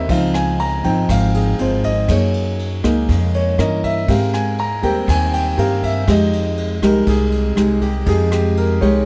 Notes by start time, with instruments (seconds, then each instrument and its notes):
Already playing: grand piano G3 A#3 C4 B4 C5 C#5 D#5 E5
0.08 upright bass C#2, nylon-string guitar C#3 F3 C4 D#4, grand piano F3 C4 D#4 F5, kick, ride
0.34 grand piano G#5, cross-stick, ride
0.59 grand piano A#5, ride
0.83 upright bass G#1, grand piano F3 C4 D#4 G5, nylon-string guitar F3 C4 D#4, kick, ride
1.09 upright bass G#1, nylon-string guitar G#2, grand piano F5, kick, cross-stick, ride
1.34 grand piano G#4, ride
1.59 upright bass G#1, nylon-string guitar F3 C4 D#4, grand piano C5, ride
1.84 grand piano D#5, kick, ride
2.08 upright bass F#2, nylon-string guitar F#3 A#3 D#4 G#4, grand piano C#5, kick, cross-stick, ride
2.34 ride
2.59 ride
2.83 upright bass C#2, grand piano G#3 A#3 D#4, nylon-string guitar A#3 D#4 G#4, kick, cross-stick, ride
3.09 upright bass F2, nylon-string guitar C#3, kick, ride
3.34 grand piano C#5, ride
3.58 upright bass G2, grand piano E3 A#3 C#4 D#5, nylon-string guitar C#4 E4 A#4, cross-stick, ride
3.84 grand piano E5, kick, ride
4.08 upright bass G#2, nylon-string guitar G#3 C4 G4 A#4, grand piano F5, kick, ride
4.34 grand piano G#5, cross-stick, ride
4.58 grand piano A#5, ride
4.82 upright bass D#2, grand piano G3 A#3 C4 G5, nylon-string guitar C4 G4 A#4, kick, ride
5.07 upright bass D#2, nylon-string guitar D#3, grand piano G#5, kick, cross-stick, ride
5.33 grand piano G5, ride
5.57 upright bass G2, nylon-string guitar C4 G4 A#4, grand piano F5, ride
5.83 grand piano E5, kick, ride
6.07 upright bass F2, nylon-string guitar F3 G#3 D#4 G4, grand piano G#3 D#4 D#5, kick, cross-stick, ride
6.33 ride
6.58 ride
6.82 upright bass C2, grand piano G3 G#3 D#4 A#4, nylon-string guitar G#3 D#4 G4, kick, cross-stick, ride
7.07 upright bass C2, nylon-string guitar C3, grand piano G#4, kick, ride
7.32 ride
7.56 upright bass C2, nylon-string guitar G#3 D#4 G4, cross-stick, ride
7.81 grand piano G4, kick, ride
8.06 upright bass F2, nylon-string guitar F3 G#3 D#4 G4, grand piano G#3 D#4 G#4, kick, ride
8.31 grand piano G4, cross-stick, ride
8.57 grand piano A#4, ride
8.81 upright bass C2, nylon-string guitar G#3 D#4 G4, grand piano C#5, kick, ride